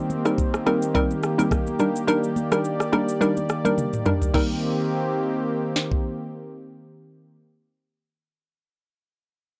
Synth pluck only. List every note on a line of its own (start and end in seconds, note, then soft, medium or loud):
0.00 0.22 G3 medium
0.00 0.22 C4 medium
0.00 0.22 D#4 medium
0.00 0.22 A#4 loud
0.25 0.63 G3 medium
0.25 0.63 C4 medium
0.25 0.64 D#4 medium
0.25 0.64 A#4 medium
0.66 0.93 G3 medium
0.66 0.93 C4 medium
0.66 0.93 D#4 medium
0.66 0.93 A#4 medium
0.94 1.16 G3 medium
0.94 1.16 C4 medium
0.94 1.16 D#4 medium
0.94 1.17 A#4 loud
1.38 1.76 G3 medium
1.38 1.77 C4 medium
1.38 1.77 D#4 medium
1.38 1.77 A#4 medium
1.79 2.06 G3 medium
1.79 2.06 D4 medium
1.79 2.06 D#4 medium
1.79 2.06 A#4 medium
2.07 2.48 G3 medium
2.07 2.48 D4 medium
2.07 2.48 D#4 medium
2.07 2.48 A#4 loud
2.52 2.90 G3 medium
2.52 2.90 D4 medium
2.52 2.90 D#4 medium
2.52 2.90 A#4 medium
2.92 3.19 G3 medium
2.92 3.19 D4 medium
2.92 3.19 D#4 medium
2.92 3.19 A#4 medium
3.21 3.43 G3 medium
3.21 3.43 D4 medium
3.21 3.43 D#4 medium
3.21 3.43 A#4 loud
3.65 4.03 G3 medium
3.65 4.03 D4 medium
3.65 4.03 D#4 medium
3.65 4.03 A#4 medium
4.06 4.32 G3 medium
4.06 4.32 D4 medium
4.06 4.32 D#4 medium
4.06 4.32 A#4 medium
4.34 7.44 G3 medium
4.34 7.45 C4 medium
4.34 7.45 D#4 medium
4.34 7.45 A#4 medium